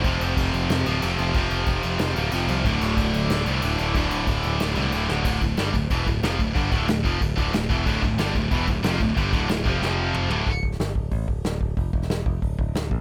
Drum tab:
CC |x-x-x-x-x-x-x-x-|x-x-x-x-x-x-x-x-|x-x-x-x-x-x-x-x-|x-x-x-x-x-x-x---|
HH |----------------|----------------|----------------|----------------|
SD |--------o-------|--------o-------|--o-----o-------|--------o-----o-|
T2 |----------------|----------------|----------------|----------------|
FT |----------------|----------------|----------------|----------------|
BD |o---o-----------|o---o-----------|o---o-----------|o---o-----------|

CC |x-x-x-x-x-x-x-x-|x-x-x-x-x-x-x-x-|x-x-x-x-x-x-x-x-|x-x-x-x---------|
HH |----------------|----------------|----------------|----------------|
SD |----o-------o---|----o-------o---|----o-------o---|----o---o-------|
T2 |----------------|----------------|----------------|------------o---|
FT |----------------|----------------|----------------|--------------o-|
BD |o-o---o-o-o---o-|o-o---o-o-o---o-|o-o---o-o-o---o-|o-o---o---------|

CC |----------------|----------------|
HH |o---o---o---o---|o---o---o---o---|
SD |---oo-------o---|---oo-------o---|
T2 |----------------|----------------|
FT |----------------|----------------|
BD |o-o---o-o-o---o-|o-o---o-o-o---o-|